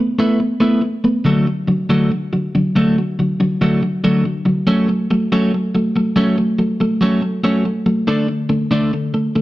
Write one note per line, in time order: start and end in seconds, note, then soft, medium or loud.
0.00 0.17 A3 medium
0.00 0.17 B3 medium
0.19 0.39 A3 medium
0.19 0.39 B3 medium
0.19 0.40 E4 medium
0.40 0.59 A3 medium
0.40 0.59 B3 medium
0.60 0.80 A3 medium
0.60 0.81 B3 medium
0.60 0.82 E4 medium
0.81 1.02 A3 medium
0.81 1.02 B3 medium
1.04 1.24 A3 medium
1.04 1.24 B3 medium
1.25 1.46 D3 medium
1.25 1.46 F#3 medium
1.25 1.46 A3 medium
1.47 1.66 D3 medium
1.68 1.87 D3 medium
1.68 1.88 F#3 medium
1.89 2.10 D3 medium
1.89 2.10 F#3 medium
1.89 2.10 A3 loud
2.11 2.30 D3 medium
2.11 2.31 F#3 medium
2.33 2.52 D3 medium
2.33 2.52 F#3 medium
2.55 2.74 D3 medium
2.55 2.74 F#3 medium
2.76 2.95 D3 medium
2.76 2.96 F#3 medium
2.76 2.96 A3 loud
2.98 3.17 D3 medium
2.98 3.17 F#3 medium
3.19 3.38 D3 medium
3.19 3.38 F#3 medium
3.40 3.59 D3 medium
3.40 3.59 F#3 medium
3.61 3.81 D3 medium
3.61 3.81 F#3 medium
3.61 3.81 A3 medium
3.82 4.01 D3 medium
3.82 4.01 F#3 medium
4.04 4.23 D3 medium
4.04 4.24 F#3 medium
4.04 4.24 A3 medium
4.25 4.44 D3 medium
4.25 4.44 F#3 medium
4.45 4.65 D3 medium
4.45 4.65 F#3 medium
4.67 4.87 F#3 medium
4.67 4.87 A3 loud
4.67 4.87 C#4 medium
4.88 5.07 F#3 medium
4.88 5.08 A3 medium
5.11 5.29 F#3 medium
5.11 5.29 A3 medium
5.32 5.51 F#3 medium
5.32 5.51 A3 loud
5.32 5.52 C#4 medium
5.54 5.72 F#3 medium
5.54 5.72 A3 medium
5.75 5.93 F#3 medium
5.75 5.93 A3 medium
5.96 6.14 F#3 medium
5.96 6.15 A3 medium
6.16 6.36 F#3 medium
6.16 6.36 A3 loud
6.16 6.36 C#4 loud
6.38 6.57 F#3 medium
6.38 6.57 A3 medium
6.59 6.78 F#3 medium
6.59 6.78 A3 medium
6.80 6.99 F#3 medium
6.80 6.99 A3 medium
7.01 7.20 F#3 medium
7.01 7.21 A3 medium
7.01 7.21 C#4 loud
7.21 7.41 F#3 medium
7.21 7.41 A3 medium
7.44 7.63 F#3 medium
7.44 7.63 A3 medium
7.44 7.64 C#4 medium
7.65 7.84 F#3 medium
7.65 7.84 A3 medium
7.86 8.05 F#3 medium
7.86 8.05 A3 medium
8.07 8.27 D3 medium
8.07 8.27 A3 medium
8.07 8.27 D4 medium
8.28 8.47 D3 medium
8.49 8.68 D3 medium
8.49 8.69 A3 medium
8.71 8.91 D3 medium
8.71 8.91 A3 medium
8.71 8.91 D4 loud
8.93 9.12 D3 medium
8.93 9.12 A3 medium
9.14 9.33 D3 medium
9.14 9.33 A3 medium
9.36 9.42 D3 medium
9.36 9.42 A3 medium